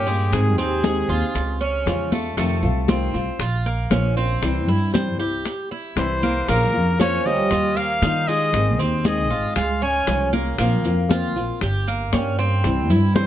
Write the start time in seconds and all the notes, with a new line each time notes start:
Already playing: G2 A#2 G4
0.07 G#3 A#3 C#4 G4, high conga, maracas
0.32 G#2 C3 D#3 G#3 C4 D#4 G#4, high bongo, high conga, maracas
0.57 D#2 C3 C4 D#4 G#4, high bongo, high conga, maracas
0.84 D#3 G#3 C4 D#4 G#4, high bongo, high conga, maracas
1.09 D#2 C4 D#4 F4 G#4, high bongo, high conga, maracas
1.35 C#2, muted nylon-string guitar stroke, high bongo, high conga, maracas
1.61 C#4, high conga
1.86 E2 C#3 F3 G#3 C#4 F4, high bongo, low bongo, high conga, maracas
2.12 G#3 A3 C#4 F4, high bongo, high conga, maracas
2.37 F2 C3 D#3 A3 C4 F4, high bongo, high conga, maracas
2.63 C2 A3 C4 F4, high conga
2.88 C3 D#3 A3 C4 F4, high bongo, high conga, maracas
3.14 C2 A3 C4 F4, high conga, maracas
3.39 A#1 F4, muted nylon-string guitar stroke, high bongo, high conga, maracas
3.66 A#3, high conga
3.90 A#1 F3 A#3 C#4 F4, high bongo, low bongo, high conga, maracas
4.16 A#3 C4 C#4 F4, high conga, maracas
4.42 C2 C3 E3 G3 C4 E4, high bongo, high conga, maracas
4.67 G2 G3 C4 E4, high bongo, high conga
4.94 C3 E3 G3 C4 E4 C5, high bongo, high conga, maracas
5.19 C2 G3 C4 E4 G4, high bongo, high conga, maracas
5.45 muted nylon-string guitar stroke, high bongo, high conga, maracas
5.71 E4, high conga
5.96 C2 C3 E3 G3 C4 E4 C5, high bongo, low bongo, high conga, maracas
6.22 G3 A#3 C4 E4, high bongo, high conga, maracas
6.48 A#1 C#3 F3 A#3 C#4 F4 A#4, high bongo, high conga, maracas
6.74 F2 A#3 C#4 F4, high conga
6.99 F3 A#3 C#4 F4 C#5, high bongo, high conga, maracas
7.25 D2 G3 A#3 C#4 F4 D#5, high conga, maracas
7.51 D#2 F4, muted nylon-string guitar stroke, high bongo, high conga, maracas
7.77 A#3 F5, high conga
8.02 D#3 G3 D#4 F4, high bongo, low bongo, high conga, maracas
8.28 G3 G#3 D#4 F4 D#5, high conga, maracas
8.53 G#1 D#3 G#3 C4 D#4 G#4, high bongo, high conga, maracas
8.78 D#2 C4 D#4 G#4, high bongo, high conga, maracas
9.04 D#3 G#3 C4 D#4 G#4 D#5, high bongo, high conga, maracas
9.30 G#1 C4 D#4 F4 G#4, high bongo, high conga, maracas
9.56 C#2 G#3 F5, muted nylon-string guitar stroke, high bongo, high conga, maracas
9.82 C#4 G#5, high conga
10.07 C2 C#3 F3 G#3 C#4 F4, high bongo, low bongo, high conga, maracas
10.33 G#3 A#3 C#4 F4, high bongo, high conga, maracas
10.58 A#1 F3 A#3 C4 F4, high bongo, high conga, maracas
10.84 F2 A#3 C4 F4, high conga, maracas
11.09 F3 A#3 C4 F4, high bongo, high conga, maracas
11.36 A#1 A#3 C4 F4, high conga, maracas
11.61 G1 G4, muted nylon-string guitar stroke, high bongo, high conga, maracas
11.87 A#3, high conga, maracas
12.12 G2 G3 A#3 C#4 G4, high bongo, low bongo, high conga, maracas
12.39 A#3 C4 C#4 G4, high conga, maracas
12.64 C2 C3 E3 G3 C4 E4, high bongo, high conga, maracas
12.90 G2 G3 C4 E4, high bongo, high conga, maracas
13.15 C3 E3 G3 C4 E4 C5, high bongo, high conga, maracas